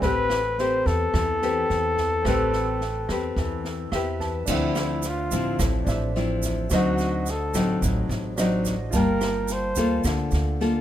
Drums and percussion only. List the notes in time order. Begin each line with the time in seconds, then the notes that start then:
0.02 kick, snare
0.30 cross-stick, snare
0.58 snare
0.86 kick, snare
1.14 kick, cross-stick, snare
1.42 snare
1.70 snare
1.97 kick, snare
2.25 kick, cross-stick, snare
2.53 snare
2.81 snare
3.09 kick, cross-stick, snare
3.36 kick, snare
3.64 snare
3.92 cross-stick, snare
4.20 kick, snare
4.47 kick, snare, crash, shaker
4.75 cross-stick, snare, shaker
5.03 snare, shaker
5.31 kick, snare, shaker
5.59 kick, cross-stick, snare, shaker
5.87 snare, shaker
6.16 snare
6.43 kick, snare, shaker
6.70 kick, cross-stick, snare, shaker
6.98 snare, shaker
7.26 snare, shaker
7.54 kick, cross-stick, snare, shaker
7.82 kick, snare, shaker
8.10 snare, shaker
8.38 cross-stick, snare, shaker
8.65 kick, snare, shaker
8.93 kick, snare, shaker
9.21 cross-stick, snare, shaker
9.48 snare, shaker
9.76 kick, snare, shaker
10.04 kick, cross-stick, snare, shaker
10.31 snare, shaker
10.61 snare